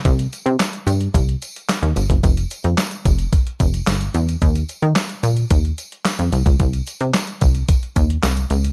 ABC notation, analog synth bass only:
X:1
M:4/4
L:1/16
Q:1/4=110
K:Eblyd
V:1 name="Analog synth bass" clef=bass
C,,2 z C, z2 G,,2 C,,2 z3 E,, G,,, ^F,,, | F,,,2 z F,, z2 F,,,2 z2 F,,,2 G,,,2 =E,,2 | E,,2 z E, z2 B,,2 E,,2 z3 F,, C,, _D,, | C,,2 z C, z2 C,,2 z2 E,,2 C,,2 _D,,2 |]